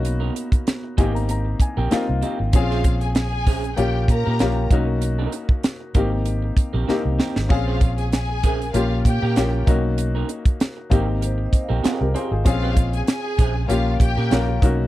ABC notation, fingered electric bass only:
X:1
M:4/4
L:1/16
Q:"Swing 16ths" 1/4=97
K:Bbdor
V:1 name="Fingered electric bass" clef=bass
=B,,,2 z4 A,,,4 z _B,,, z C,, z A,,, | B,,,8 B,,,2 B,, B,, B,,,2 =B,,,2- | =B,,,2 z4 A,,,4 z _B,,, z C,, z A,,, | B,,,8 B,,,2 B,, B,, B,,,2 =B,,,2- |
=B,,,2 z4 A,,,4 z _B,,, z C,, z A,,, | B,,,4 z2 B,,,2 B,,,2 B,,, B,, B,,,2 =B,,,2 |]